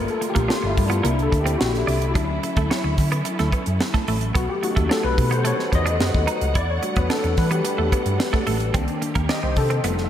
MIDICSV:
0, 0, Header, 1, 7, 480
1, 0, Start_track
1, 0, Tempo, 549954
1, 1880, Time_signature, 4, 2, 24, 8
1, 8811, End_track
2, 0, Start_track
2, 0, Title_t, "Tine electric piano"
2, 0, Program_c, 0, 4
2, 0, Note_on_c, 0, 57, 56
2, 0, Note_on_c, 0, 58, 51
2, 0, Note_on_c, 0, 65, 59
2, 91, Note_on_c, 0, 69, 86
2, 97, Control_c, 0, 64, 127
2, 259, Note_on_c, 0, 67, 87
2, 268, Note_off_c, 0, 57, 0
2, 268, Note_off_c, 0, 69, 0
2, 269, Note_off_c, 0, 58, 0
2, 275, Note_off_c, 0, 65, 0
2, 421, Note_on_c, 0, 65, 84
2, 432, Note_off_c, 0, 67, 0
2, 580, Note_on_c, 0, 64, 90
2, 594, Note_off_c, 0, 65, 0
2, 749, Note_on_c, 0, 62, 77
2, 754, Note_off_c, 0, 64, 0
2, 913, Note_off_c, 0, 62, 0
2, 918, Note_on_c, 0, 58, 51
2, 923, Note_on_c, 0, 62, 49
2, 930, Control_c, 0, 64, 0
2, 931, Note_on_c, 0, 64, 54
2, 1065, Control_c, 0, 64, 127
2, 1071, Note_on_c, 0, 69, 87
2, 1228, Note_on_c, 0, 67, 83
2, 1238, Note_off_c, 0, 58, 0
2, 1240, Note_off_c, 0, 69, 0
2, 1241, Note_off_c, 0, 62, 0
2, 1244, Note_off_c, 0, 64, 0
2, 1382, Note_on_c, 0, 66, 86
2, 1398, Note_off_c, 0, 67, 0
2, 1458, Note_off_c, 0, 66, 0
2, 1551, Note_on_c, 0, 64, 75
2, 1867, Note_off_c, 0, 64, 0
2, 1869, Note_on_c, 0, 54, 56
2, 1871, Note_on_c, 0, 61, 52
2, 1877, Note_on_c, 0, 64, 59
2, 1892, Control_c, 0, 64, 0
2, 2027, Control_c, 0, 64, 127
2, 2561, Note_off_c, 0, 54, 0
2, 2562, Note_off_c, 0, 61, 0
2, 2565, Note_off_c, 0, 64, 0
2, 3807, Note_on_c, 0, 66, 93
2, 3812, Control_c, 0, 64, 0
2, 3920, Note_on_c, 0, 67, 83
2, 3928, Note_off_c, 0, 66, 0
2, 3974, Note_off_c, 0, 67, 0
2, 3990, Control_c, 0, 64, 127
2, 4035, Note_on_c, 0, 57, 57
2, 4037, Note_on_c, 0, 61, 52
2, 4042, Note_on_c, 0, 63, 61
2, 4046, Note_on_c, 0, 66, 86
2, 4282, Note_on_c, 0, 69, 86
2, 4291, Note_off_c, 0, 66, 0
2, 4401, Note_on_c, 0, 71, 98
2, 4406, Note_off_c, 0, 69, 0
2, 4645, Note_on_c, 0, 72, 89
2, 4649, Note_off_c, 0, 71, 0
2, 4723, Note_off_c, 0, 57, 0
2, 4724, Note_off_c, 0, 61, 0
2, 4727, Note_off_c, 0, 63, 0
2, 4767, Note_off_c, 0, 72, 0
2, 4770, Note_on_c, 0, 73, 91
2, 5013, Note_off_c, 0, 73, 0
2, 5018, Note_on_c, 0, 75, 108
2, 5730, Note_on_c, 0, 74, 105
2, 5734, Control_c, 0, 64, 0
2, 5750, Note_off_c, 0, 75, 0
2, 5849, Note_off_c, 0, 74, 0
2, 5851, Note_on_c, 0, 73, 82
2, 5874, Control_c, 0, 64, 127
2, 5949, Note_on_c, 0, 55, 55
2, 5954, Note_on_c, 0, 57, 53
2, 5958, Note_on_c, 0, 62, 50
2, 5963, Note_on_c, 0, 66, 60
2, 6084, Note_on_c, 0, 71, 81
2, 6092, Note_off_c, 0, 73, 0
2, 6206, Note_off_c, 0, 71, 0
2, 6207, Note_on_c, 0, 69, 88
2, 6313, Note_off_c, 0, 69, 0
2, 6442, Note_on_c, 0, 71, 84
2, 6556, Note_on_c, 0, 67, 74
2, 6564, Note_off_c, 0, 71, 0
2, 6638, Note_off_c, 0, 55, 0
2, 6641, Note_off_c, 0, 57, 0
2, 6643, Note_off_c, 0, 62, 0
2, 6645, Note_off_c, 0, 66, 0
2, 7241, Note_off_c, 0, 67, 0
2, 7626, Note_on_c, 0, 51, 56
2, 7629, Note_on_c, 0, 58, 53
2, 7635, Note_on_c, 0, 62, 64
2, 7646, Control_c, 0, 64, 0
2, 7811, Control_c, 0, 64, 127
2, 8118, Note_on_c, 0, 75, 89
2, 8228, Note_off_c, 0, 75, 0
2, 8237, Note_on_c, 0, 72, 84
2, 8356, Note_on_c, 0, 69, 84
2, 8359, Note_off_c, 0, 72, 0
2, 8553, Note_off_c, 0, 51, 0
2, 8555, Note_off_c, 0, 58, 0
2, 8558, Note_off_c, 0, 62, 0
2, 8583, Note_on_c, 0, 55, 53
2, 8590, Note_on_c, 0, 57, 50
2, 8597, Note_on_c, 0, 63, 58
2, 8603, Control_c, 0, 64, 0
2, 8736, Control_c, 0, 64, 127
2, 8767, Note_on_c, 0, 76, 75
2, 8785, Note_off_c, 0, 69, 0
2, 8811, Note_off_c, 0, 55, 0
2, 8811, Note_off_c, 0, 57, 0
2, 8811, Note_off_c, 0, 63, 0
2, 8811, Note_off_c, 0, 76, 0
2, 8811, End_track
3, 0, Start_track
3, 0, Title_t, "Clean electric guitar"
3, 0, Program_c, 1, 27
3, 305, Note_on_c, 1, 58, 72
3, 387, Note_off_c, 1, 58, 0
3, 423, Note_on_c, 1, 62, 70
3, 505, Note_off_c, 1, 62, 0
3, 784, Note_on_c, 1, 59, 71
3, 866, Note_off_c, 1, 59, 0
3, 903, Note_on_c, 1, 58, 78
3, 986, Note_off_c, 1, 58, 0
3, 1271, Note_on_c, 1, 60, 76
3, 1351, Note_off_c, 1, 60, 0
3, 1636, Note_on_c, 1, 62, 70
3, 1715, Note_off_c, 1, 62, 0
3, 1881, Note_on_c, 1, 62, 73
3, 1958, Note_off_c, 1, 62, 0
3, 2245, Note_on_c, 1, 57, 72
3, 2322, Note_off_c, 1, 57, 0
3, 2362, Note_on_c, 1, 61, 75
3, 2440, Note_off_c, 1, 61, 0
3, 2722, Note_on_c, 1, 59, 80
3, 2800, Note_off_c, 1, 59, 0
3, 2961, Note_on_c, 1, 57, 65
3, 3039, Note_off_c, 1, 57, 0
3, 3080, Note_on_c, 1, 59, 71
3, 3159, Note_off_c, 1, 59, 0
3, 3438, Note_on_c, 1, 57, 72
3, 3517, Note_off_c, 1, 57, 0
3, 3563, Note_on_c, 1, 57, 75
3, 3641, Note_off_c, 1, 57, 0
3, 3794, Note_on_c, 1, 59, 82
3, 3874, Note_off_c, 1, 59, 0
3, 4157, Note_on_c, 1, 57, 82
3, 4237, Note_off_c, 1, 57, 0
3, 4272, Note_on_c, 1, 62, 70
3, 4353, Note_off_c, 1, 62, 0
3, 4635, Note_on_c, 1, 59, 73
3, 4715, Note_off_c, 1, 59, 0
3, 4753, Note_on_c, 1, 57, 78
3, 4834, Note_off_c, 1, 57, 0
3, 5112, Note_on_c, 1, 62, 77
3, 5193, Note_off_c, 1, 62, 0
3, 5476, Note_on_c, 1, 63, 75
3, 5555, Note_off_c, 1, 63, 0
3, 5722, Note_on_c, 1, 64, 74
3, 5799, Note_off_c, 1, 64, 0
3, 6081, Note_on_c, 1, 59, 70
3, 6158, Note_off_c, 1, 59, 0
3, 6196, Note_on_c, 1, 62, 70
3, 6275, Note_off_c, 1, 62, 0
3, 6553, Note_on_c, 1, 59, 76
3, 6633, Note_off_c, 1, 59, 0
3, 6793, Note_on_c, 1, 57, 62
3, 6873, Note_off_c, 1, 57, 0
3, 6917, Note_on_c, 1, 59, 72
3, 6995, Note_off_c, 1, 59, 0
3, 7271, Note_on_c, 1, 57, 75
3, 7350, Note_off_c, 1, 57, 0
3, 7390, Note_on_c, 1, 57, 78
3, 7470, Note_off_c, 1, 57, 0
3, 7629, Note_on_c, 1, 60, 80
3, 7709, Note_off_c, 1, 60, 0
3, 7989, Note_on_c, 1, 58, 76
3, 8069, Note_off_c, 1, 58, 0
3, 8110, Note_on_c, 1, 62, 74
3, 8189, Note_off_c, 1, 62, 0
3, 8468, Note_on_c, 1, 60, 70
3, 8547, Note_off_c, 1, 60, 0
3, 8591, Note_on_c, 1, 59, 81
3, 8669, Note_off_c, 1, 59, 0
3, 8811, End_track
4, 0, Start_track
4, 0, Title_t, "String section"
4, 0, Program_c, 2, 48
4, 0, Note_on_c, 2, 46, 61
4, 0, Note_on_c, 2, 50, 68
4, 0, Note_on_c, 2, 53, 64
4, 0, Note_on_c, 2, 55, 65
4, 0, Note_on_c, 2, 65, 81
4, 902, Note_on_c, 2, 64, 80
4, 904, Note_on_c, 2, 60, 65
4, 910, Note_off_c, 2, 65, 0
4, 911, Note_off_c, 2, 53, 0
4, 1862, Note_off_c, 2, 46, 0
4, 1862, Note_off_c, 2, 55, 0
4, 1864, Note_off_c, 2, 60, 0
4, 1876, Note_on_c, 2, 57, 64
4, 1879, Note_on_c, 2, 54, 68
4, 1881, Note_on_c, 2, 61, 65
4, 3766, Note_off_c, 2, 64, 0
4, 3768, Note_off_c, 2, 50, 0
4, 3784, Note_off_c, 2, 61, 0
4, 3793, Note_on_c, 2, 51, 68
4, 3794, Note_on_c, 2, 59, 69
4, 3796, Note_on_c, 2, 78, 77
4, 5686, Note_off_c, 2, 54, 0
4, 5697, Note_off_c, 2, 51, 0
4, 5698, Note_off_c, 2, 59, 0
4, 5727, Note_on_c, 2, 62, 67
4, 5730, Note_on_c, 2, 55, 65
4, 5731, Note_on_c, 2, 52, 67
4, 7598, Note_off_c, 2, 78, 0
4, 7600, Note_off_c, 2, 57, 0
4, 7620, Note_off_c, 2, 62, 0
4, 7623, Note_off_c, 2, 52, 0
4, 7632, Note_on_c, 2, 60, 69
4, 7633, Note_on_c, 2, 51, 72
4, 7634, Note_on_c, 2, 67, 79
4, 7638, Note_on_c, 2, 58, 64
4, 8569, Note_off_c, 2, 55, 0
4, 8582, Note_off_c, 2, 67, 0
4, 8582, Note_on_c, 2, 65, 75
4, 8585, Note_off_c, 2, 58, 0
4, 8585, Note_on_c, 2, 57, 65
4, 8811, Note_off_c, 2, 51, 0
4, 8811, Note_off_c, 2, 57, 0
4, 8811, Note_off_c, 2, 60, 0
4, 8811, Note_off_c, 2, 65, 0
4, 8811, End_track
5, 0, Start_track
5, 0, Title_t, "Fingered electric bass"
5, 0, Program_c, 3, 33
5, 313, Note_on_c, 3, 34, 75
5, 412, Note_off_c, 3, 34, 0
5, 553, Note_on_c, 3, 31, 86
5, 652, Note_off_c, 3, 31, 0
5, 675, Note_on_c, 3, 43, 92
5, 873, Note_off_c, 3, 43, 0
5, 911, Note_on_c, 3, 36, 93
5, 1110, Note_off_c, 3, 36, 0
5, 1157, Note_on_c, 3, 38, 88
5, 1354, Note_off_c, 3, 38, 0
5, 1400, Note_on_c, 3, 34, 91
5, 1596, Note_off_c, 3, 34, 0
5, 1640, Note_on_c, 3, 36, 83
5, 1879, Note_off_c, 3, 36, 0
5, 1879, Note_on_c, 3, 38, 99
5, 2076, Note_off_c, 3, 38, 0
5, 2242, Note_on_c, 3, 38, 90
5, 2340, Note_off_c, 3, 38, 0
5, 2481, Note_on_c, 3, 38, 83
5, 2579, Note_off_c, 3, 38, 0
5, 2603, Note_on_c, 3, 50, 93
5, 2799, Note_off_c, 3, 50, 0
5, 2968, Note_on_c, 3, 38, 90
5, 3064, Note_off_c, 3, 38, 0
5, 3205, Note_on_c, 3, 42, 79
5, 3302, Note_off_c, 3, 42, 0
5, 3562, Note_on_c, 3, 33, 89
5, 3758, Note_off_c, 3, 33, 0
5, 3799, Note_on_c, 3, 35, 90
5, 3899, Note_off_c, 3, 35, 0
5, 4162, Note_on_c, 3, 39, 77
5, 4260, Note_off_c, 3, 39, 0
5, 4401, Note_on_c, 3, 35, 84
5, 4499, Note_off_c, 3, 35, 0
5, 4520, Note_on_c, 3, 47, 96
5, 4815, Note_off_c, 3, 47, 0
5, 4997, Note_on_c, 3, 40, 84
5, 5239, Note_off_c, 3, 40, 0
5, 5239, Note_on_c, 3, 42, 86
5, 5338, Note_off_c, 3, 42, 0
5, 5364, Note_on_c, 3, 39, 82
5, 5461, Note_off_c, 3, 39, 0
5, 5599, Note_on_c, 3, 37, 86
5, 5698, Note_off_c, 3, 37, 0
5, 5720, Note_on_c, 3, 40, 96
5, 5916, Note_off_c, 3, 40, 0
5, 6079, Note_on_c, 3, 40, 89
5, 6178, Note_off_c, 3, 40, 0
5, 6319, Note_on_c, 3, 40, 84
5, 6417, Note_off_c, 3, 40, 0
5, 6441, Note_on_c, 3, 52, 101
5, 6636, Note_off_c, 3, 52, 0
5, 6794, Note_on_c, 3, 40, 83
5, 6893, Note_off_c, 3, 40, 0
5, 7033, Note_on_c, 3, 43, 81
5, 7133, Note_off_c, 3, 43, 0
5, 7396, Note_on_c, 3, 33, 87
5, 7592, Note_off_c, 3, 33, 0
5, 7631, Note_on_c, 3, 36, 95
5, 7731, Note_off_c, 3, 36, 0
5, 7993, Note_on_c, 3, 39, 91
5, 8092, Note_off_c, 3, 39, 0
5, 8232, Note_on_c, 3, 36, 89
5, 8331, Note_off_c, 3, 36, 0
5, 8349, Note_on_c, 3, 48, 92
5, 8547, Note_off_c, 3, 48, 0
5, 8586, Note_on_c, 3, 29, 95
5, 8785, Note_off_c, 3, 29, 0
5, 8811, End_track
6, 0, Start_track
6, 0, Title_t, "Muted clean electric guitar strokes"
6, 186, Note_on_c, 9, 29, 40
6, 274, Note_off_c, 9, 29, 0
6, 547, Note_on_c, 9, 29, 41
6, 634, Note_off_c, 9, 29, 0
6, 1154, Note_on_c, 9, 29, 39
6, 1241, Note_off_c, 9, 29, 0
6, 2126, Note_on_c, 9, 29, 43
6, 2213, Note_off_c, 9, 29, 0
6, 2482, Note_on_c, 9, 29, 43
6, 2569, Note_off_c, 9, 29, 0
6, 2839, Note_on_c, 9, 29, 44
6, 2926, Note_off_c, 9, 29, 0
6, 3322, Note_on_c, 9, 29, 47
6, 3409, Note_off_c, 9, 29, 0
6, 4040, Note_on_c, 9, 29, 43
6, 4127, Note_off_c, 9, 29, 0
6, 4394, Note_on_c, 9, 29, 43
6, 4482, Note_off_c, 9, 29, 0
6, 4992, Note_on_c, 9, 29, 40
6, 5079, Note_off_c, 9, 29, 0
6, 5959, Note_on_c, 9, 29, 43
6, 6046, Note_off_c, 9, 29, 0
6, 6318, Note_on_c, 9, 29, 43
6, 6405, Note_off_c, 9, 29, 0
6, 6673, Note_on_c, 9, 29, 43
6, 6760, Note_off_c, 9, 29, 0
6, 7155, Note_on_c, 9, 29, 46
6, 7242, Note_off_c, 9, 29, 0
6, 7871, Note_on_c, 9, 29, 41
6, 7958, Note_off_c, 9, 29, 0
6, 8232, Note_on_c, 9, 29, 45
6, 8319, Note_off_c, 9, 29, 0
6, 8811, End_track
7, 0, Start_track
7, 0, Title_t, "Drums"
7, 71, Note_on_c, 9, 42, 34
7, 158, Note_off_c, 9, 42, 0
7, 191, Note_on_c, 9, 42, 63
7, 278, Note_off_c, 9, 42, 0
7, 311, Note_on_c, 9, 42, 50
7, 315, Note_on_c, 9, 36, 83
7, 398, Note_off_c, 9, 42, 0
7, 403, Note_off_c, 9, 36, 0
7, 438, Note_on_c, 9, 38, 97
7, 526, Note_off_c, 9, 38, 0
7, 676, Note_on_c, 9, 36, 81
7, 676, Note_on_c, 9, 46, 65
7, 763, Note_off_c, 9, 36, 0
7, 763, Note_off_c, 9, 46, 0
7, 799, Note_on_c, 9, 42, 51
7, 886, Note_off_c, 9, 42, 0
7, 914, Note_on_c, 9, 42, 92
7, 1001, Note_off_c, 9, 42, 0
7, 1039, Note_on_c, 9, 42, 35
7, 1126, Note_off_c, 9, 42, 0
7, 1156, Note_on_c, 9, 36, 80
7, 1165, Note_on_c, 9, 42, 58
7, 1243, Note_off_c, 9, 36, 0
7, 1253, Note_off_c, 9, 42, 0
7, 1278, Note_on_c, 9, 42, 57
7, 1366, Note_off_c, 9, 42, 0
7, 1403, Note_on_c, 9, 38, 107
7, 1490, Note_off_c, 9, 38, 0
7, 1525, Note_on_c, 9, 38, 33
7, 1527, Note_on_c, 9, 42, 32
7, 1612, Note_off_c, 9, 38, 0
7, 1614, Note_off_c, 9, 42, 0
7, 1643, Note_on_c, 9, 46, 61
7, 1731, Note_off_c, 9, 46, 0
7, 1761, Note_on_c, 9, 42, 46
7, 1848, Note_off_c, 9, 42, 0
7, 1879, Note_on_c, 9, 42, 96
7, 1880, Note_on_c, 9, 36, 112
7, 1967, Note_off_c, 9, 36, 0
7, 1967, Note_off_c, 9, 42, 0
7, 2124, Note_on_c, 9, 42, 68
7, 2211, Note_off_c, 9, 42, 0
7, 2238, Note_on_c, 9, 42, 48
7, 2241, Note_on_c, 9, 36, 87
7, 2326, Note_off_c, 9, 42, 0
7, 2328, Note_off_c, 9, 36, 0
7, 2366, Note_on_c, 9, 38, 107
7, 2453, Note_off_c, 9, 38, 0
7, 2600, Note_on_c, 9, 46, 66
7, 2602, Note_on_c, 9, 36, 84
7, 2604, Note_on_c, 9, 38, 30
7, 2687, Note_off_c, 9, 46, 0
7, 2689, Note_off_c, 9, 36, 0
7, 2691, Note_off_c, 9, 38, 0
7, 2723, Note_on_c, 9, 42, 53
7, 2811, Note_off_c, 9, 42, 0
7, 2837, Note_on_c, 9, 42, 95
7, 2925, Note_off_c, 9, 42, 0
7, 2959, Note_on_c, 9, 42, 34
7, 2960, Note_on_c, 9, 38, 32
7, 3047, Note_off_c, 9, 42, 0
7, 3048, Note_off_c, 9, 38, 0
7, 3076, Note_on_c, 9, 36, 80
7, 3078, Note_on_c, 9, 42, 61
7, 3163, Note_off_c, 9, 36, 0
7, 3165, Note_off_c, 9, 42, 0
7, 3195, Note_on_c, 9, 42, 55
7, 3283, Note_off_c, 9, 42, 0
7, 3321, Note_on_c, 9, 38, 116
7, 3408, Note_off_c, 9, 38, 0
7, 3442, Note_on_c, 9, 36, 86
7, 3442, Note_on_c, 9, 38, 34
7, 3443, Note_on_c, 9, 42, 35
7, 3529, Note_off_c, 9, 36, 0
7, 3529, Note_off_c, 9, 38, 0
7, 3530, Note_off_c, 9, 42, 0
7, 3558, Note_on_c, 9, 46, 64
7, 3645, Note_off_c, 9, 46, 0
7, 3675, Note_on_c, 9, 42, 48
7, 3762, Note_off_c, 9, 42, 0
7, 3800, Note_on_c, 9, 36, 118
7, 3801, Note_on_c, 9, 42, 94
7, 3887, Note_off_c, 9, 36, 0
7, 3888, Note_off_c, 9, 42, 0
7, 4044, Note_on_c, 9, 42, 64
7, 4131, Note_off_c, 9, 42, 0
7, 4160, Note_on_c, 9, 42, 50
7, 4162, Note_on_c, 9, 36, 88
7, 4247, Note_off_c, 9, 42, 0
7, 4249, Note_off_c, 9, 36, 0
7, 4287, Note_on_c, 9, 38, 107
7, 4374, Note_off_c, 9, 38, 0
7, 4521, Note_on_c, 9, 36, 88
7, 4522, Note_on_c, 9, 46, 65
7, 4609, Note_off_c, 9, 36, 0
7, 4609, Note_off_c, 9, 46, 0
7, 4646, Note_on_c, 9, 42, 55
7, 4733, Note_off_c, 9, 42, 0
7, 4756, Note_on_c, 9, 42, 100
7, 4844, Note_off_c, 9, 42, 0
7, 4881, Note_on_c, 9, 38, 31
7, 4969, Note_off_c, 9, 38, 0
7, 4998, Note_on_c, 9, 36, 77
7, 5001, Note_on_c, 9, 42, 62
7, 5085, Note_off_c, 9, 36, 0
7, 5088, Note_off_c, 9, 42, 0
7, 5119, Note_on_c, 9, 42, 59
7, 5206, Note_off_c, 9, 42, 0
7, 5241, Note_on_c, 9, 38, 115
7, 5328, Note_off_c, 9, 38, 0
7, 5363, Note_on_c, 9, 36, 81
7, 5451, Note_off_c, 9, 36, 0
7, 5478, Note_on_c, 9, 42, 61
7, 5565, Note_off_c, 9, 42, 0
7, 5598, Note_on_c, 9, 42, 48
7, 5685, Note_off_c, 9, 42, 0
7, 5719, Note_on_c, 9, 42, 91
7, 5720, Note_on_c, 9, 36, 112
7, 5806, Note_off_c, 9, 42, 0
7, 5807, Note_off_c, 9, 36, 0
7, 5958, Note_on_c, 9, 42, 62
7, 6045, Note_off_c, 9, 42, 0
7, 6073, Note_on_c, 9, 42, 51
7, 6080, Note_on_c, 9, 36, 88
7, 6161, Note_off_c, 9, 42, 0
7, 6167, Note_off_c, 9, 36, 0
7, 6197, Note_on_c, 9, 38, 106
7, 6285, Note_off_c, 9, 38, 0
7, 6319, Note_on_c, 9, 42, 35
7, 6406, Note_off_c, 9, 42, 0
7, 6435, Note_on_c, 9, 46, 66
7, 6439, Note_on_c, 9, 36, 90
7, 6439, Note_on_c, 9, 38, 32
7, 6522, Note_off_c, 9, 46, 0
7, 6526, Note_off_c, 9, 36, 0
7, 6527, Note_off_c, 9, 38, 0
7, 6558, Note_on_c, 9, 42, 52
7, 6645, Note_off_c, 9, 42, 0
7, 6674, Note_on_c, 9, 42, 102
7, 6761, Note_off_c, 9, 42, 0
7, 6915, Note_on_c, 9, 36, 74
7, 6918, Note_on_c, 9, 42, 59
7, 7002, Note_off_c, 9, 36, 0
7, 7006, Note_off_c, 9, 42, 0
7, 7033, Note_on_c, 9, 42, 56
7, 7120, Note_off_c, 9, 42, 0
7, 7157, Note_on_c, 9, 38, 119
7, 7245, Note_off_c, 9, 38, 0
7, 7273, Note_on_c, 9, 38, 34
7, 7276, Note_on_c, 9, 36, 89
7, 7360, Note_off_c, 9, 38, 0
7, 7364, Note_off_c, 9, 36, 0
7, 7390, Note_on_c, 9, 46, 64
7, 7477, Note_off_c, 9, 46, 0
7, 7508, Note_on_c, 9, 42, 45
7, 7595, Note_off_c, 9, 42, 0
7, 7629, Note_on_c, 9, 42, 97
7, 7633, Note_on_c, 9, 36, 110
7, 7717, Note_off_c, 9, 42, 0
7, 7720, Note_off_c, 9, 36, 0
7, 7748, Note_on_c, 9, 42, 35
7, 7835, Note_off_c, 9, 42, 0
7, 7873, Note_on_c, 9, 42, 69
7, 7960, Note_off_c, 9, 42, 0
7, 7988, Note_on_c, 9, 42, 51
7, 7993, Note_on_c, 9, 36, 87
7, 8075, Note_off_c, 9, 42, 0
7, 8080, Note_off_c, 9, 36, 0
7, 8110, Note_on_c, 9, 38, 108
7, 8197, Note_off_c, 9, 38, 0
7, 8347, Note_on_c, 9, 46, 65
7, 8350, Note_on_c, 9, 36, 83
7, 8434, Note_off_c, 9, 46, 0
7, 8437, Note_off_c, 9, 36, 0
7, 8471, Note_on_c, 9, 42, 51
7, 8559, Note_off_c, 9, 42, 0
7, 8588, Note_on_c, 9, 42, 98
7, 8675, Note_off_c, 9, 42, 0
7, 8708, Note_on_c, 9, 38, 32
7, 8795, Note_off_c, 9, 38, 0
7, 8811, End_track
0, 0, End_of_file